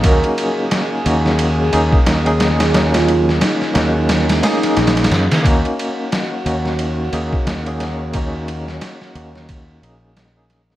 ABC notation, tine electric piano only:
X:1
M:4/4
L:1/16
Q:"Swing 16ths" 1/4=89
K:Ebm
V:1 name="Tine electric piano"
[B,DEG]6 [B,DEG]4 [B,DEA]3 [B,DEA]3 | [G,B,DE]6 [B,DEG]4 [B,DEA] [B,DEA]4- [B,DEA] | [B,DEG]6 [B,DEG]4 [B,DEA]3 [B,DEA]3 | [B,DEG]6 [B,DEG]4 [B,DEA]3 [B,DEA]3 |]